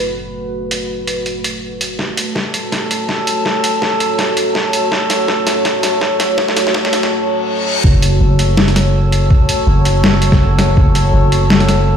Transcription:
0.00 1.97 F#1 medium
0.00 1.95 A3 medium
0.00 1.95 F#4 medium
0.00 1.97 B4 medium
0.71 closed hi-hat medium
1.07 closed hi-hat medium
1.26 closed hi-hat soft
1.44 closed hi-hat medium
1.81 closed hi-hat medium
1.99 7.80 A3 medium
1.99 7.80 F#4 medium
1.99 7.11 A4 medium
1.99 7.80 C#5 medium
1.99 kick medium
1.99 snare soft
2.17 closed hi-hat medium
2.35 kick medium
2.35 snare soft
2.54 closed hi-hat medium
2.72 kick medium
2.72 snare soft
2.72 closed hi-hat soft
2.91 closed hi-hat medium
3.09 kick medium
3.09 snare medium
3.27 closed hi-hat medium
3.45 kick loud
3.45 snare medium
3.64 closed hi-hat medium
3.82 kick loud
3.82 snare medium
4.00 closed hi-hat medium
4.18 kick medium
4.18 snare medium
4.18 closed hi-hat soft
4.37 closed hi-hat medium
4.55 kick medium
4.55 snare medium
4.73 closed hi-hat medium
4.92 kick medium
4.92 snare medium
5.10 snare medium
5.10 closed hi-hat medium
5.28 kick loud
5.28 snare medium
5.47 snare medium
5.47 closed hi-hat medium
5.65 kick loud
5.65 snare medium
5.65 closed hi-hat soft
5.83 snare medium
5.83 closed hi-hat medium
6.01 kick loud
6.01 snare medium
6.20 snare medium
6.20 closed hi-hat medium
6.38 kick loud
6.38 snare medium
6.48 snare medium
6.57 snare medium
6.57 closed hi-hat medium
6.67 snare medium
6.74 kick loud
6.74 snare loud
6.85 snare medium
6.93 snare loud
6.93 closed hi-hat medium
7.03 snare medium
7.11 reverse cymbal medium
7.84 8.20 F#1 medium
7.84 11.97 A3 medium
7.84 11.97 F#4 medium
7.84 11.97 A4 medium
7.84 11.97 C#5 medium
7.84 kick loud
8.02 closed hi-hat medium
8.21 9.29 F#1 medium
8.39 closed hi-hat medium
8.57 snare loud
8.68 snare soft
8.68 closed hi-hat soft
8.76 snare medium
8.76 closed hi-hat medium
9.12 closed hi-hat medium
9.31 kick loud
9.49 closed hi-hat medium
9.67 10.76 F#1 loud
9.85 closed hi-hat medium
10.04 snare loud
10.14 snare soft
10.22 closed hi-hat medium
10.32 kick loud
10.32 snare soft
10.32 snare medium
10.59 snare medium
10.59 closed hi-hat medium
10.77 11.12 F#1 loud
10.77 kick loud
10.95 closed hi-hat medium
11.13 11.97 F#1 loud
11.32 closed hi-hat medium
11.50 snare loud
11.60 snare soft
11.60 closed hi-hat soft
11.69 snare medium
11.69 closed hi-hat medium

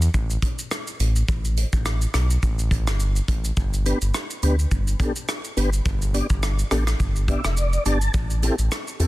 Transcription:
0.02 shaker medium
0.14 0.37 A1 loud
0.14 kick medium
0.14 shaker medium
0.30 shaker medium
0.42 kick medium
0.42 closed hi-hat medium
0.42 shaker medium
0.59 shaker medium
0.71 cross-stick medium
0.71 shaker medium
0.87 shaker soft
1.00 1.23 A1 medium
1.00 closed hi-hat medium
1.00 shaker medium
1.16 shaker medium
1.28 1.65 A1 loud
1.28 kick loud
1.28 shaker medium
1.45 shaker medium
1.57 closed hi-hat medium
1.57 shaker medium
1.73 2.06 A1 medium
1.73 kick loud
1.73 shaker medium
1.85 cross-stick medium
1.85 shaker medium
2.02 shaker medium
2.14 2.37 B1 loud
2.14 cross-stick medium
2.14 closed hi-hat medium
2.14 shaker soft
2.30 shaker medium
2.43 2.89 A1 loud
2.43 kick medium
2.43 shaker medium
2.59 shaker soft
2.71 kick medium
2.71 closed hi-hat medium
2.71 shaker medium
2.87 3.21 G1 medium
2.87 cross-stick medium
2.87 shaker medium
3.00 shaker medium
3.16 shaker soft
3.28 3.51 A1 loud
3.28 kick loud
3.28 closed hi-hat medium
3.28 shaker medium
3.44 shaker medium
3.57 3.93 G1 loud
3.57 kick loud
3.57 shaker medium
3.73 shaker medium
3.86 3.98 B3 medium
3.86 3.98 D4 medium
3.86 3.98 G4 medium
3.86 3.99 B4 medium
3.86 closed hi-hat medium
3.86 shaker medium
4.01 4.12 G1 medium
4.01 shaker medium
4.14 cross-stick medium
4.14 shaker medium
4.30 shaker medium
4.43 4.66 D2 loud
4.43 4.56 B3 medium
4.43 4.56 D4 medium
4.43 4.56 G4 medium
4.43 4.56 B4 medium
4.43 closed hi-hat medium
4.43 shaker soft
4.59 shaker medium
4.71 4.95 G1 loud
4.71 kick medium
4.71 shaker medium
4.87 shaker medium
5.00 5.13 B3 medium
5.00 5.13 D4 medium
5.00 5.13 G4 medium
5.00 5.13 A4 loud
5.00 kick medium
5.00 closed hi-hat medium
5.00 shaker medium
5.16 shaker medium
5.28 cross-stick loud
5.28 shaker medium
5.44 shaker soft
5.57 5.80 G1 medium
5.57 5.70 B3 medium
5.57 5.70 D4 medium
5.57 5.70 G4 medium
5.57 5.70 B4 medium
5.57 closed hi-hat medium
5.57 shaker medium
5.73 shaker medium
5.86 6.22 G1 loud
5.86 kick loud
5.86 shaker medium
6.02 shaker medium
6.14 6.27 B3 medium
6.14 6.27 D4 medium
6.14 6.27 G4 medium
6.14 6.27 D5 medium
6.14 closed hi-hat medium
6.14 shaker medium
6.30 6.63 G1 medium
6.30 kick loud
6.30 shaker medium
6.43 cross-stick medium
6.43 shaker medium
6.59 shaker medium
6.71 6.94 A1 medium
6.71 6.84 B3 medium
6.71 6.84 D4 medium
6.71 6.84 G4 medium
6.71 6.84 A4 medium
6.71 cross-stick medium
6.71 closed hi-hat medium
6.71 shaker soft
6.87 cross-stick loud
6.87 shaker medium
7.00 7.36 G1 loud
7.00 kick medium
7.00 shaker medium
7.16 shaker medium
7.28 7.41 B3 medium
7.28 7.41 D4 medium
7.28 7.41 G4 medium
7.28 7.41 D5 loud
7.28 7.55 E5 medium
7.28 kick medium
7.28 closed hi-hat medium
7.28 shaker medium
7.44 7.78 F1 medium
7.44 cross-stick medium
7.44 shaker medium
7.57 7.84 D5 medium
7.57 shaker medium
7.73 shaker soft
7.86 8.09 G1 medium
7.86 7.98 B3 medium
7.86 7.98 D4 medium
7.86 7.98 G4 medium
7.86 7.98 D5 medium
7.86 8.12 A5 medium
7.86 closed hi-hat medium
7.86 shaker medium
8.01 shaker medium
8.14 8.50 A1 loud
8.14 kick loud
8.14 shaker medium
8.30 shaker medium
8.43 8.56 C4 medium
8.43 8.56 E4 medium
8.43 8.56 G4 medium
8.43 8.56 A4 medium
8.43 closed hi-hat medium
8.43 shaker medium
8.59 8.69 A1 medium
8.59 shaker medium
8.71 cross-stick medium
8.71 shaker medium
8.87 shaker medium
9.00 9.07 E2 medium
9.00 9.07 C4 medium
9.00 9.07 E4 medium
9.00 9.07 G4 medium
9.00 9.07 A4 medium
9.00 closed hi-hat medium
9.00 shaker soft

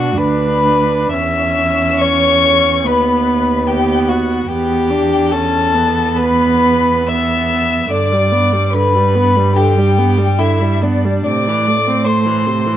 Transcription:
0.00 0.17 B2 medium
0.00 0.16 D4 medium
0.00 0.19 F#4 medium
0.00 0.19 F#5 medium
0.16 1.12 D2 medium
0.16 1.15 D4 medium
0.16 1.11 B4 medium
0.16 1.12 B5 loud
1.12 2.86 E2 medium
1.12 2.86 C#4 medium
1.12 2.02 E5 medium
1.12 1.98 E6 loud
2.00 2.87 C#5 loud
2.00 2.88 C#6 loud
2.84 4.48 D#2 medium
2.84 3.67 B3 medium
2.84 3.70 B4 medium
2.84 3.69 B5 medium
3.67 4.48 B3 medium
3.67 4.11 G4 medium
3.67 4.10 G5 medium
4.09 4.50 F#4 medium
4.09 4.49 F#5 medium
4.49 7.87 E2 medium
4.49 4.92 B3 medium
4.49 5.33 G4 medium
4.49 5.35 G5 medium
4.91 5.35 D4 medium
5.32 5.76 C#4 medium
5.32 6.17 A4 medium
5.32 6.20 A5 loud
5.75 7.07 B3 medium
6.16 7.10 B4 medium
6.16 7.08 B5 loud
7.07 7.90 B3 medium
7.07 7.92 E5 medium
7.07 7.90 E6 medium
7.91 11.22 G2 medium
7.91 8.14 D3 medium
7.91 8.72 D5 medium
7.91 8.75 D6 loud
8.12 8.33 G3 medium
8.32 8.54 B3 medium
8.53 8.76 G3 medium
8.73 8.96 D3 medium
8.73 9.55 B4 medium
8.73 9.58 B5 loud
8.95 9.17 G3 medium
9.15 9.38 B3 medium
9.37 9.57 G3 medium
9.55 9.79 D3 medium
9.55 10.40 G4 medium
9.55 10.40 G5 loud
9.78 10.00 G3 medium
9.98 10.20 B3 medium
10.18 10.40 G3 medium
10.38 10.62 D3 medium
10.38 10.83 E4 medium
10.38 10.85 E5 medium
10.61 10.84 G3 medium
10.81 11.06 B3 medium
10.81 11.25 D4 medium
10.81 11.25 D5 medium
11.04 11.26 G3 medium
11.24 12.77 A2 medium
11.24 12.06 D5 medium
11.24 12.08 D6 loud
11.28 11.49 C3 medium
11.48 11.69 E3 medium
11.68 11.89 A3 medium
11.87 12.07 C4 medium
12.04 12.27 A3 medium
12.04 12.77 C5 medium
12.04 12.77 C6 medium
12.26 12.48 E3 medium
12.47 12.68 C3 medium
12.67 12.77 E3 medium

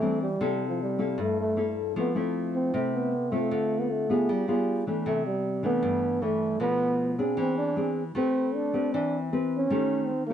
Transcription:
0.00 0.38 E3 medium
0.00 0.27 G3 medium
0.00 0.22 A3 medium
0.00 0.27 C4 medium
0.00 0.27 D4 medium
0.23 0.64 G3 medium
0.41 1.16 C3 medium
0.41 0.96 A#3 soft
0.41 0.96 E4 soft
0.41 0.96 A4 medium
0.69 0.80 F3 medium
0.82 1.23 G3 medium
0.99 1.54 A#3 medium
0.99 1.54 E4 soft
0.99 1.54 A4 medium
1.18 1.94 G2 medium
1.18 1.39 A3 medium
1.41 1.75 A3 medium
1.56 1.92 A#3 soft
1.56 1.93 E4 medium
1.56 1.93 A4 medium
1.96 2.72 F3 medium
1.96 2.07 A3 soft
1.96 2.16 B3 medium
1.96 2.08 C4 soft
1.96 2.08 E4 soft
2.15 2.70 A3 medium
2.15 2.70 C4 medium
2.15 2.71 E4 medium
2.56 2.96 C4 medium
2.74 3.49 C3 medium
2.74 3.12 A3 soft
2.74 3.12 C4 soft
2.74 3.12 E4 medium
2.95 3.35 B3 medium
3.32 4.06 A3 medium
3.32 3.81 A3 medium
3.32 4.06 C4 medium
3.32 4.06 F4 medium
3.51 4.27 D3 medium
3.80 3.93 B3 medium
3.92 4.33 A3 medium
4.10 4.45 B3 soft
4.10 4.45 F4 medium
4.10 4.45 G#4 medium
4.29 4.86 G3 medium
4.29 4.49 G3 medium
4.48 4.84 G3 medium
4.48 4.83 B3 medium
4.48 4.83 F4 medium
4.48 4.84 G#4 medium
4.87 5.22 E3 medium
4.87 5.23 A3 medium
4.87 5.22 D4 medium
5.06 5.81 C3 medium
5.06 5.25 A3 medium
5.27 5.62 G3 medium
5.63 6.18 E3 medium
5.63 6.19 A3 medium
5.63 6.26 B3 medium
5.63 6.19 D4 medium
5.83 6.58 G2 medium
6.22 6.57 E3 medium
6.22 6.57 A3 soft
6.22 6.61 A3 medium
6.22 6.58 D4 medium
6.60 7.36 B2 medium
6.60 7.15 F3 soft
6.60 7.15 A3 soft
6.60 7.15 B3 loud
6.60 7.16 D4 medium
7.18 7.74 C4 medium
7.18 7.74 D4 medium
7.18 7.74 G#4 medium
7.37 8.13 E3 medium
7.37 7.57 C4 medium
7.58 7.94 D4 medium
7.76 8.01 C4 soft
7.76 8.02 D4 soft
7.76 8.02 G#4 medium
8.15 8.91 A3 medium
8.15 8.70 C4 soft
8.15 8.56 C4 loud
8.15 8.70 G4 soft
8.15 8.71 B4 medium
8.55 8.93 D4 medium
8.73 9.29 C4 medium
8.73 9.29 G4 soft
8.73 9.29 B4 medium
8.94 9.69 E3 medium
8.94 9.18 D4 medium
9.33 9.68 C4 medium
9.33 9.68 G4 soft
9.33 9.68 B4 medium
9.57 10.08 C#4 medium
9.70 10.34 D#3 medium
9.70 10.09 A3 medium
9.70 10.09 C#4 soft
9.70 10.09 G4 medium
10.07 10.27 C4 medium
10.27 10.34 A#3 medium
10.27 10.34 C#4 medium
10.27 10.34 G4 medium

